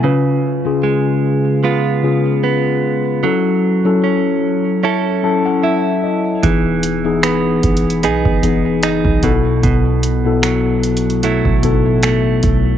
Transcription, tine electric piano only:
0, 0, Header, 1, 2, 480
1, 0, Start_track
1, 0, Key_signature, 4, "major"
1, 0, Tempo, 800000
1, 21, Time_signature, 4, 2, 24, 8
1, 7667, End_track
2, 0, Start_track
2, 0, Title_t, "Tine electric piano"
2, 0, Program_c, 0, 4
2, 0, Control_c, 0, 64, 127
2, 20, Note_on_c, 0, 49, 78
2, 23, Note_on_c, 0, 61, 73
2, 26, Note_on_c, 0, 65, 68
2, 29, Control_c, 0, 64, 0
2, 29, Note_on_c, 0, 71, 86
2, 138, Control_c, 0, 64, 127
2, 346, Note_off_c, 0, 49, 0
2, 348, Note_off_c, 0, 61, 0
2, 349, Note_off_c, 0, 65, 0
2, 351, Note_off_c, 0, 71, 0
2, 390, Note_on_c, 0, 49, 85
2, 393, Note_on_c, 0, 61, 72
2, 396, Note_on_c, 0, 65, 77
2, 400, Note_on_c, 0, 68, 92
2, 1134, Note_off_c, 0, 49, 0
2, 1135, Note_off_c, 0, 61, 0
2, 1137, Note_off_c, 0, 65, 0
2, 1139, Note_off_c, 0, 68, 0
2, 1216, Note_on_c, 0, 49, 78
2, 1219, Note_on_c, 0, 61, 71
2, 1224, Note_on_c, 0, 65, 71
2, 1226, Note_on_c, 0, 68, 85
2, 1864, Note_off_c, 0, 49, 0
2, 1866, Note_off_c, 0, 61, 0
2, 1868, Note_off_c, 0, 65, 0
2, 1869, Note_off_c, 0, 68, 0
2, 1938, Note_on_c, 0, 54, 74
2, 1941, Note_on_c, 0, 61, 72
2, 1944, Note_on_c, 0, 64, 69
2, 1948, Note_on_c, 0, 69, 83
2, 1949, Control_c, 0, 64, 0
2, 2063, Control_c, 0, 64, 127
2, 2266, Note_off_c, 0, 54, 0
2, 2267, Note_off_c, 0, 61, 0
2, 2269, Note_off_c, 0, 64, 0
2, 2271, Note_off_c, 0, 69, 0
2, 2308, Note_on_c, 0, 54, 81
2, 2311, Note_on_c, 0, 61, 75
2, 2313, Note_on_c, 0, 64, 75
2, 2317, Note_on_c, 0, 69, 89
2, 3053, Note_off_c, 0, 54, 0
2, 3054, Note_off_c, 0, 61, 0
2, 3055, Note_off_c, 0, 64, 0
2, 3057, Note_off_c, 0, 69, 0
2, 3139, Note_on_c, 0, 54, 74
2, 3142, Note_on_c, 0, 61, 67
2, 3144, Note_on_c, 0, 81, 68
2, 3145, Note_on_c, 0, 64, 71
2, 3148, Note_on_c, 0, 69, 83
2, 3263, Note_off_c, 0, 81, 0
2, 3272, Note_on_c, 0, 78, 65
2, 3374, Note_off_c, 0, 78, 0
2, 3384, Note_on_c, 0, 76, 71
2, 3606, Note_off_c, 0, 76, 0
2, 3622, Note_on_c, 0, 75, 63
2, 3786, Note_off_c, 0, 54, 0
2, 3787, Note_off_c, 0, 61, 0
2, 3788, Note_off_c, 0, 64, 0
2, 3790, Note_off_c, 0, 69, 0
2, 3845, Note_off_c, 0, 75, 0
2, 3856, Note_on_c, 0, 52, 77
2, 3858, Note_on_c, 0, 59, 74
2, 3862, Note_on_c, 0, 63, 68
2, 3865, Note_on_c, 0, 68, 85
2, 3868, Control_c, 0, 64, 0
2, 3984, Control_c, 0, 64, 127
2, 4184, Note_off_c, 0, 52, 0
2, 4185, Note_off_c, 0, 59, 0
2, 4187, Note_off_c, 0, 63, 0
2, 4189, Note_off_c, 0, 68, 0
2, 4227, Note_on_c, 0, 52, 86
2, 4229, Note_on_c, 0, 59, 71
2, 4231, Note_on_c, 0, 63, 75
2, 4235, Note_on_c, 0, 68, 94
2, 4972, Note_off_c, 0, 52, 0
2, 4973, Note_off_c, 0, 59, 0
2, 4974, Note_off_c, 0, 63, 0
2, 4976, Note_off_c, 0, 68, 0
2, 5060, Note_on_c, 0, 52, 76
2, 5061, Note_on_c, 0, 59, 74
2, 5064, Note_on_c, 0, 63, 72
2, 5069, Note_on_c, 0, 68, 81
2, 5535, Note_off_c, 0, 59, 0
2, 5537, Note_off_c, 0, 63, 0
2, 5538, Note_on_c, 0, 47, 87
2, 5540, Note_off_c, 0, 52, 0
2, 5542, Note_on_c, 0, 59, 75
2, 5544, Note_on_c, 0, 63, 66
2, 5545, Note_off_c, 0, 68, 0
2, 5548, Note_on_c, 0, 69, 99
2, 5550, Control_c, 0, 64, 0
2, 5584, Note_on_c, 0, 64, 78
2, 5585, Note_off_c, 0, 63, 0
2, 5659, Control_c, 0, 64, 127
2, 6076, Note_off_c, 0, 47, 0
2, 6078, Note_off_c, 0, 59, 0
2, 6081, Note_off_c, 0, 69, 0
2, 6099, Note_off_c, 0, 64, 0
2, 6150, Note_on_c, 0, 47, 88
2, 6155, Note_on_c, 0, 59, 75
2, 6157, Note_on_c, 0, 64, 78
2, 6160, Note_on_c, 0, 69, 93
2, 6894, Note_off_c, 0, 47, 0
2, 6896, Note_off_c, 0, 59, 0
2, 6897, Note_off_c, 0, 64, 0
2, 6899, Note_off_c, 0, 69, 0
2, 6979, Note_on_c, 0, 47, 78
2, 6982, Note_on_c, 0, 59, 70
2, 6985, Note_on_c, 0, 63, 55
2, 6988, Note_on_c, 0, 69, 89
2, 7024, Note_on_c, 0, 64, 72
2, 7025, Note_off_c, 0, 63, 0
2, 7625, Note_off_c, 0, 47, 0
2, 7627, Note_off_c, 0, 59, 0
2, 7630, Note_off_c, 0, 69, 0
2, 7648, Note_off_c, 0, 64, 0
2, 7667, End_track
0, 0, End_of_file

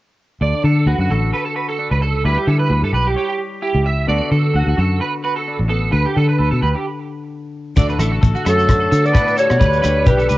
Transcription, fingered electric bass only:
0, 0, Header, 1, 2, 480
1, 0, Start_track
1, 0, Key_signature, 2, "major"
1, 0, Tempo, 459770
1, 429, Time_signature, 4, 2, 24, 8
1, 10836, End_track
2, 0, Start_track
2, 0, Title_t, "Fingered electric bass"
2, 0, Program_c, 0, 33
2, 424, Note_on_c, 0, 38, 66
2, 546, Note_off_c, 0, 38, 0
2, 663, Note_on_c, 0, 50, 74
2, 889, Note_off_c, 0, 50, 0
2, 899, Note_on_c, 0, 38, 78
2, 1021, Note_off_c, 0, 38, 0
2, 1028, Note_on_c, 0, 42, 72
2, 1135, Note_off_c, 0, 42, 0
2, 1149, Note_on_c, 0, 33, 72
2, 1372, Note_off_c, 0, 33, 0
2, 1996, Note_on_c, 0, 37, 67
2, 2323, Note_off_c, 0, 37, 0
2, 2345, Note_on_c, 0, 38, 73
2, 2466, Note_off_c, 0, 38, 0
2, 2581, Note_on_c, 0, 50, 74
2, 2808, Note_off_c, 0, 50, 0
2, 2818, Note_on_c, 0, 38, 80
2, 2943, Note_off_c, 0, 38, 0
2, 2949, Note_on_c, 0, 43, 68
2, 3050, Note_off_c, 0, 43, 0
2, 3056, Note_on_c, 0, 35, 72
2, 3285, Note_off_c, 0, 35, 0
2, 3911, Note_on_c, 0, 37, 75
2, 4240, Note_off_c, 0, 37, 0
2, 4264, Note_on_c, 0, 38, 84
2, 4386, Note_off_c, 0, 38, 0
2, 4505, Note_on_c, 0, 50, 75
2, 4729, Note_off_c, 0, 50, 0
2, 4745, Note_on_c, 0, 38, 77
2, 4866, Note_off_c, 0, 38, 0
2, 4873, Note_on_c, 0, 38, 72
2, 4978, Note_off_c, 0, 38, 0
2, 4991, Note_on_c, 0, 42, 79
2, 5213, Note_off_c, 0, 42, 0
2, 5840, Note_on_c, 0, 33, 66
2, 6165, Note_off_c, 0, 33, 0
2, 6187, Note_on_c, 0, 38, 81
2, 6307, Note_off_c, 0, 38, 0
2, 6436, Note_on_c, 0, 50, 79
2, 6655, Note_off_c, 0, 50, 0
2, 6672, Note_on_c, 0, 38, 72
2, 6790, Note_off_c, 0, 38, 0
2, 6808, Note_on_c, 0, 47, 69
2, 6906, Note_off_c, 0, 47, 0
2, 6916, Note_on_c, 0, 38, 73
2, 7032, Note_off_c, 0, 38, 0
2, 8107, Note_on_c, 0, 38, 81
2, 8331, Note_off_c, 0, 38, 0
2, 8337, Note_on_c, 0, 33, 89
2, 8566, Note_off_c, 0, 33, 0
2, 8590, Note_on_c, 0, 33, 77
2, 8709, Note_off_c, 0, 33, 0
2, 8833, Note_on_c, 0, 42, 77
2, 9278, Note_off_c, 0, 42, 0
2, 9311, Note_on_c, 0, 50, 84
2, 9533, Note_off_c, 0, 50, 0
2, 9925, Note_on_c, 0, 47, 83
2, 10019, Note_off_c, 0, 47, 0
2, 10026, Note_on_c, 0, 38, 80
2, 10250, Note_off_c, 0, 38, 0
2, 10277, Note_on_c, 0, 38, 76
2, 10497, Note_off_c, 0, 38, 0
2, 10510, Note_on_c, 0, 35, 70
2, 10733, Note_off_c, 0, 35, 0
2, 10759, Note_on_c, 0, 37, 77
2, 10836, Note_off_c, 0, 37, 0
2, 10836, End_track
0, 0, End_of_file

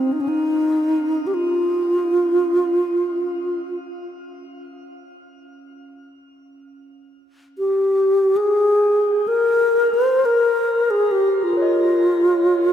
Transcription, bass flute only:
0, 0, Header, 1, 2, 480
1, 0, Start_track
1, 0, Tempo, 500000
1, 12218, End_track
2, 0, Start_track
2, 0, Title_t, "Bass flute"
2, 0, Program_c, 0, 73
2, 0, Note_on_c, 0, 60, 57
2, 121, Note_on_c, 0, 63, 64
2, 135, Note_off_c, 0, 60, 0
2, 200, Note_on_c, 0, 61, 59
2, 214, Note_off_c, 0, 63, 0
2, 271, Note_on_c, 0, 63, 72
2, 286, Note_off_c, 0, 61, 0
2, 1217, Note_on_c, 0, 67, 53
2, 1231, Note_off_c, 0, 63, 0
2, 1287, Note_on_c, 0, 65, 69
2, 1301, Note_off_c, 0, 67, 0
2, 3623, Note_off_c, 0, 65, 0
2, 7281, Note_on_c, 0, 67, 64
2, 8033, Note_on_c, 0, 68, 77
2, 8047, Note_off_c, 0, 67, 0
2, 8906, Note_on_c, 0, 70, 75
2, 8920, Note_off_c, 0, 68, 0
2, 9544, Note_on_c, 0, 72, 81
2, 9559, Note_off_c, 0, 70, 0
2, 9842, Note_on_c, 0, 70, 72
2, 9857, Note_off_c, 0, 72, 0
2, 10468, Note_on_c, 0, 68, 80
2, 10483, Note_off_c, 0, 70, 0
2, 10670, Note_on_c, 0, 67, 78
2, 10684, Note_off_c, 0, 68, 0
2, 10976, Note_on_c, 0, 65, 71
2, 10990, Note_off_c, 0, 67, 0
2, 12218, Note_off_c, 0, 65, 0
2, 12218, End_track
0, 0, End_of_file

